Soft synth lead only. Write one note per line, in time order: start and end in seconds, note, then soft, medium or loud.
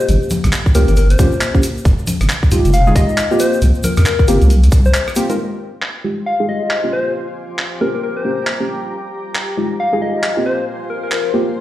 0.75 0.84 A#4 medium
0.88 0.94 A#4 medium
0.97 1.08 A#4 medium
1.11 1.55 C5 medium
2.74 2.93 F5 medium
2.96 3.38 D#5 loud
3.40 3.59 C5 loud
3.84 3.95 A#4 medium
3.97 4.04 A#4 medium
4.06 4.25 A#4 medium
4.86 4.91 C5 medium
4.94 5.03 C5 medium
6.26 6.45 F5 medium
6.49 6.91 D#5 medium
6.93 7.12 C5 medium
7.81 7.90 A#4 medium
7.95 8.00 A#4 medium
8.03 8.14 A#4 medium
8.17 8.61 C5 medium
9.80 9.99 F5 medium
10.02 10.44 D#5 medium
10.46 10.65 C5 medium
10.90 11.01 A#4 medium
11.03 11.10 A#4 medium
11.12 11.31 A#4 medium